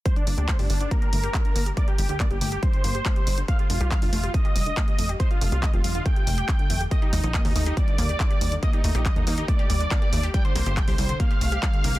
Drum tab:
HH |xxoxxooxxxoxxxox|xxoxxxoxxxoxxxox|xxoxxooxxxoxxxox|xxoxxxoxxxoxxxox|
CP |----x-------x---|----x-------x---|----x-------x---|----x-------x---|
BD |o---o---o---o---|o---o---o---o---|o---o---o---o---|o---o---o---o---|

HH |xxoxxooxxxoxxxox|xxoxxxoxxxoxxxox|xxoxxooxxxoxxxox|
CP |----x-------x---|----x-------x---|----x-------x---|
BD |o---o---o---o---|o---o---o---o---|o---o---o---o---|